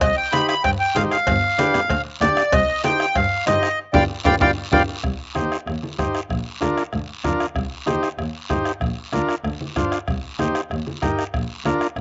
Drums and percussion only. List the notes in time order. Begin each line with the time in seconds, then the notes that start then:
0.01 bombo low, bombo rim, cowbell, high conga, long guiro
0.32 bombo rim, cowbell, high conga, short guiro
0.49 bombo rim, short guiro
0.64 bombo low, bombo rim, cowbell, high conga, long guiro
0.96 bombo rim, cowbell, high conga, short guiro
1.11 bombo rim, short guiro
1.27 bombo low, bombo rim, cowbell, high conga, long guiro
1.59 bombo rim, cowbell, high conga, short guiro
1.74 bombo rim, low conga, short guiro
1.90 bombo low, bombo rim, cowbell, high conga, long guiro
2.21 bombo rim, cowbell, high conga, low conga, short guiro
2.37 bombo rim, short guiro
2.52 bombo low, bombo rim, cowbell, high conga, long guiro
2.84 bombo rim, cowbell, high conga, short guiro
3.00 bombo rim, short guiro
3.15 bombo low, bombo rim, cowbell, high conga, long guiro
3.47 bombo rim, cowbell, high conga, short guiro
3.63 bombo rim, short guiro
3.94 bombo low, high conga, high timbale, long guiro
4.25 bombo low, high conga, high timbale, long guiro
4.41 bombo low, high conga, high timbale, long guiro
4.72 bombo low, high conga, high timbale, long guiro
5.04 bombo low, bombo rim, long guiro
5.35 bombo rim, high conga, short guiro
5.52 bombo rim, short guiro
5.67 bombo rim, long guiro
5.83 high conga
5.99 bombo low, bombo rim, high conga, short guiro
6.15 bombo rim, short guiro
6.30 bombo low, bombo rim, long guiro
6.62 bombo rim, high conga, short guiro
6.77 bombo rim, short guiro
6.93 bombo rim, long guiro
7.24 bombo low, bombo rim, high conga, short guiro
7.40 bombo rim, short guiro
7.56 bombo low, bombo rim, long guiro
7.87 bombo rim, high conga, short guiro
8.03 bombo rim, short guiro
8.19 bombo rim, long guiro
8.50 bombo low, bombo rim, high conga, short guiro
8.65 bombo rim, short guiro
8.81 bombo low, bombo rim, long guiro
9.13 bombo rim, high conga, short guiro
9.29 bombo rim, short guiro
9.44 bombo rim, long guiro
9.61 high conga
9.76 bombo low, bombo rim, high conga, short guiro
9.92 bombo rim, short guiro
10.08 bombo low, bombo rim, long guiro
10.39 bombo rim, high conga, short guiro
10.55 bombo rim, short guiro
10.71 bombo rim, long guiro
10.87 high conga
11.02 bombo low, bombo rim, high conga, short guiro
11.19 bombo rim, short guiro
11.34 bombo low, bombo rim, long guiro
11.65 bombo rim, high conga, short guiro
11.81 bombo rim, short guiro
11.96 bombo rim, long guiro